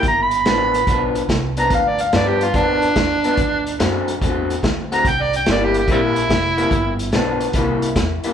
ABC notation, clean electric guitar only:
X:1
M:4/4
L:1/8
Q:"Swing" 1/4=144
K:Gmix
V:1 name="Clean electric guitar"
z2 [G,,F,B,D] z [G,,F,B,D] z2 [G,,F,B,D] | z2 [G,,F,B,D] z [G,,F,B,D] z2 [G,,F,B,D] | z2 [D,A,C^F] z [D,A,CF] z2 [D,A,CF] | z2 [C,G,_B,E] z [C,G,B,E] z2 [C,G,B,E] |
z2 [G,,F,B,D] z [C,G,_B,E] z2 [C,G,B,E] |]